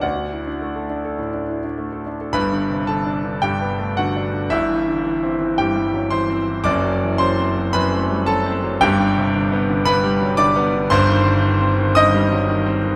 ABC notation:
X:1
M:4/4
L:1/16
Q:1/4=112
K:G
V:1 name="Grand piano"
[Fdf]12- [Fdf]2 z2 | [Bb]4 [Aa]4 [Gg]4 [Ff]4 | [Ee]8 [Gg]4 [cc']4 | [dd']4 [cc']4 [Bb]4 [Aa]4 |
[Gg]8 [Bb]4 [dd']4 | [cc']8 [_e_e']8 |]
V:2 name="Grand piano" clef=bass
D,, D E D A, A D A A,, D E D A, A D A | (3[G,,,G,,]2 D,2 C,2 (3D,2 D2 D,2 (3G,,2 B,2 A,2 (3D,2 D2 D,2 | (3[G,,,G,,]2 E,2 D,2 (3E,2 C2 E,2 (3G,,2 G,2 F,2 (3E,2 C2 E,2 | (3[F,,,F,,]2 F,2 E,2 (3F,2 C2 F,2 (3F,,2 A,2 G,2 (3F,2 C2 F,2 |
(3[G,,,G,,]2 D,2 C,2 (3D,2 B,2 D,2 (3G,,2 G,2 F,2 (3D,2 B,2 D,2 | (3[G,,,G,,]2 _E,2 D,2 (3E,2 C2 E,2 (3G,,2 G,2 F,2 (3E,2 C2 E,2 |]